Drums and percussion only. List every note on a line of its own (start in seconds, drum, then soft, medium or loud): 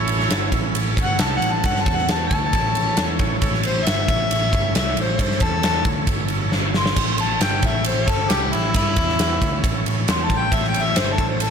0.08 ride medium
0.20 snare soft
0.30 snare loud
0.30 ride loud
0.52 kick loud
0.52 ride medium
0.75 ride medium
0.97 kick loud
0.97 ride medium
1.19 snare loud
1.19 ride loud
1.42 ride medium
1.64 kick loud
1.64 ride medium
1.76 snare soft
1.86 kick loud
1.86 ride medium
1.98 snare soft
2.08 snare loud
2.08 ride medium
2.31 kick loud
2.31 ride medium
2.53 kick loud
2.53 ride medium
2.75 ride medium
2.97 snare loud
2.97 ride loud
3.19 kick loud
3.19 ride medium
3.42 kick loud
3.42 ride medium
3.54 snare soft
3.63 ride medium
3.87 snare loud
3.87 ride loud
4.08 kick loud
4.08 ride medium
4.31 ride loud
4.53 kick loud
4.53 ride medium
4.75 snare loud
4.75 ride loud
4.97 ride medium
5.19 kick loud
5.19 ride medium
5.31 snare soft
5.40 kick loud
5.40 ride medium
5.63 snare loud
5.63 ride medium
5.85 kick loud
5.85 ride medium
6.07 kick loud
6.07 ride medium
6.28 ride medium
6.52 snare medium
6.74 snare medium
6.86 snare medium
6.96 kick loud
6.96 ride medium
6.96 crash medium
7.18 ride medium
7.41 snare loud
7.41 ride loud
7.62 kick loud
7.62 ride medium
7.84 ride loud
8.08 kick loud
8.08 ride medium
8.30 snare loud
8.30 ride loud
8.53 ride medium
8.74 kick loud
8.74 ride medium
8.96 kick loud
8.96 ride medium
9.09 snare soft
9.19 snare loud
9.19 ride loud
9.42 kick loud
9.42 ride medium
9.64 kick loud
9.64 ride medium
9.86 ride medium
10.08 snare loud
10.08 ride medium
10.30 kick medium
10.30 ride medium
10.52 kick loud
10.52 ride medium
10.64 snare soft
10.74 ride medium
10.96 snare loud
10.96 ride loud
11.18 kick loud
11.18 ride medium
11.40 ride loud